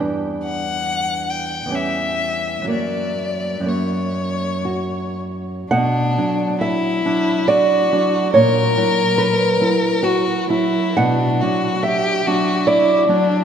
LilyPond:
<<
  \new Staff \with { instrumentName = "Violin" } { \time 3/4 \key b \minor \tempo 4 = 69 r8 fis''4 g''8 e''4 | d''4 cis''4. r8 | d'4 e'4 fis'4 | ais'2 fis'8 e'8 |
d'8 fis'8 g'8 fis'8 e'8 d'8 | }
  \new Staff \with { instrumentName = "Nylon-string guitar" } { \time 3/4 \key b \minor << { r2. | r2 fis'4 | fis''4 e''4 d''4 | cis''4 b'4 fis'4 |
fis''4 e''4 d''4 | } \\ { <e, g d'>2 <e, g cis'>4 | <fis, fis ais>4 <fis, fis ais>2 | b,8 <fis d'>4 <fis d'>4 <fis d'>8 | ais,8 <fis e'>4 <fis e'>4 <fis e'>8 |
b,8 <fis d'>4 <fis d'>4 <fis d'>8 | } >> }
>>